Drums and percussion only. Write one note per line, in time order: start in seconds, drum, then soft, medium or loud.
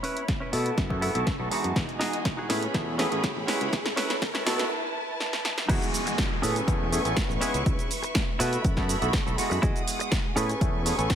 0.04 open hi-hat loud
0.17 closed hi-hat medium
0.28 kick loud
0.28 snare medium
0.28 closed hi-hat medium
0.53 open hi-hat loud
0.66 closed hi-hat medium
0.78 kick loud
0.78 snare medium
0.78 closed hi-hat medium
0.90 kick medium
1.02 open hi-hat loud
1.15 closed hi-hat medium
1.27 kick loud
1.27 snare medium
1.27 closed hi-hat medium
1.51 open hi-hat loud
1.64 closed hi-hat medium
1.76 kick loud
1.76 snare medium
1.76 closed hi-hat medium
1.89 closed hi-hat soft
2.01 snare medium
2.01 open hi-hat loud
2.13 closed hi-hat medium
2.25 kick loud
2.25 snare medium
2.25 closed hi-hat medium
2.50 snare medium
2.50 open hi-hat loud
2.63 closed hi-hat soft
2.74 kick loud
2.74 snare medium
2.74 closed hi-hat medium
2.99 snare medium
2.99 open hi-hat loud
3.12 closed hi-hat medium
3.24 kick loud
3.24 snare medium
3.24 closed hi-hat medium
3.48 snare medium
3.48 open hi-hat loud
3.61 closed hi-hat medium
3.73 kick loud
3.73 snare medium
3.73 closed hi-hat medium
3.86 snare medium
3.86 closed hi-hat soft
3.97 snare medium
3.97 open hi-hat loud
4.10 snare medium
4.10 closed hi-hat medium
4.22 kick loud
4.22 snare loud
4.22 closed hi-hat medium
4.35 snare medium
4.35 closed hi-hat soft
4.47 snare loud
4.47 open hi-hat loud
4.59 snare medium
4.59 closed hi-hat medium
5.20 snare medium
5.33 snare medium
5.45 snare medium
5.58 snare medium
5.69 kick loud
5.69 closed hi-hat medium
5.69 crash loud
5.69 shaker soft
5.82 closed hi-hat soft
5.82 shaker soft
5.94 open hi-hat loud
5.94 shaker medium
6.07 closed hi-hat medium
6.07 shaker soft
6.18 kick loud
6.18 snare loud
6.18 closed hi-hat medium
6.18 shaker soft
6.43 open hi-hat loud
6.43 shaker medium
6.56 closed hi-hat medium
6.56 shaker soft
6.68 kick loud
6.68 closed hi-hat medium
6.68 shaker soft
6.92 open hi-hat loud
6.92 shaker medium
7.05 closed hi-hat medium
7.05 shaker soft
7.17 kick loud
7.17 snare loud
7.17 closed hi-hat medium
7.17 shaker soft
7.30 shaker soft
7.41 open hi-hat loud
7.41 shaker medium
7.54 closed hi-hat medium
7.54 shaker soft
7.66 kick loud
7.66 closed hi-hat medium
7.66 shaker soft
7.79 closed hi-hat soft
7.79 shaker soft
7.91 open hi-hat loud
7.91 shaker medium
8.04 closed hi-hat medium
8.04 shaker soft
8.15 kick loud
8.15 snare loud
8.15 closed hi-hat medium
8.15 shaker soft
8.40 open hi-hat loud
8.40 shaker medium
8.53 closed hi-hat medium
8.53 shaker soft
8.65 kick loud
8.65 closed hi-hat medium
8.65 shaker soft
8.77 kick medium
8.77 snare soft
8.89 open hi-hat loud
8.89 shaker medium
9.02 closed hi-hat soft
9.02 shaker soft
9.13 kick loud
9.13 snare loud
9.13 closed hi-hat medium
9.13 shaker soft
9.27 shaker soft
9.38 open hi-hat loud
9.38 shaker medium
9.51 open hi-hat medium
9.51 shaker soft
9.63 kick loud
9.63 closed hi-hat medium
9.63 shaker soft
9.76 closed hi-hat soft
9.76 shaker soft
9.88 open hi-hat loud
9.88 shaker medium
10.00 closed hi-hat medium
10.00 shaker soft
10.12 kick loud
10.12 snare loud
10.12 closed hi-hat medium
10.12 shaker soft
10.37 open hi-hat loud
10.37 shaker medium
10.49 closed hi-hat medium
10.49 shaker soft
10.61 kick loud
10.61 closed hi-hat medium
10.61 shaker soft
10.86 open hi-hat loud
10.86 shaker medium
10.99 closed hi-hat soft
10.99 shaker soft
11.10 kick loud
11.10 snare loud
11.10 closed hi-hat medium
11.10 shaker soft